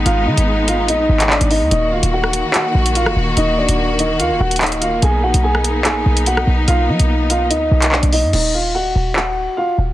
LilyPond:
<<
  \new Staff \with { instrumentName = "Grand piano" } { \time 4/4 \key ees \minor \tempo 4 = 145 <f' f''>8 <ees' ees''>4 <f' f''>8 <ees' ees''>4 <d' d''>8 <ees' ees''>8 | <ees' ees''>8 <f' f''>8 <ges' ges''>4 <ges' ges''>4 <f' f''>8 r8 | <ees' ees''>8 <d' d''>4 <ees' ees''>8 <f' f''>8 <ges' ges''>8 <ees' ees''>8 <f' f''>8 | <aes' aes''>8 <fis' fis''>8 <aes' aes''>4 <aes' aes''>4 <fis' fis''>8 r8 |
<f' f''>8 dis'4 <f' f''>8 <dis' dis''>4 <d' d''>8 <dis' dis''>8 | <ees' ees''>8 <f' f''>8 <ges' ges''>4 <ges' ges''>4 <f' f''>8 r8 | }
  \new Staff \with { instrumentName = "String section" } { \time 4/4 \key ees \minor << { <ces' ees'>1 | <ees ges'>1~ | <ees ges'>1 | <b dis'>1~ |
<b dis'>1 | r1 | } \\ { aes1 | bes1~ | bes1~ | bes1~ |
bes1 | r1 | } >> }
  \new Staff \with { instrumentName = "808-style bass" } { \clef bass \time 4/4 \key ees \minor aes,,8 ees16 aes,,4~ aes,,16 bes,,8 aes,,8. aes,,8 ees,16 | ees,,8 d,,16 ees,,4 r8. bes,,8. f,,16 ees,,8 | ees,,8. ees,,4~ ees,,16 ees,16 ees,,16 ees,,8. d,,16. ees,,16. | b,,8 ais,,16 b,,4~ b,,16 ais,,8 b,,4 b,,8 |
b,,8 fis16 b,,4~ b,,16 d,8 b,,8. b,,8 fis,16 | ees,,4 d,,16 ees,,16 ees,,4 d,,16 r8. ees,,8 | }
  \new DrumStaff \with { instrumentName = "Drums" } \drummode { \time 4/4 hh8. hh16 r8 hh8 hh8. <hc hh>16 hc16 hh16 hho8 | hh8. hh16 r16 ss16 hh8 <hc hh>8. hh16 hh16 ss8. | hh8. hh16 r8 hh8 hh8. hh32 hh32 <hc hh>32 hh32 hh16 hh8 | hh8. hh16 r16 ss16 hh8 <hc hh>8. hh16 hh16 ss8. |
hh8. hh16 r8 hh8 hh8. <hc hh>16 hc16 hh16 hho8 | cymc4 r4 hc4 r4 | }
>>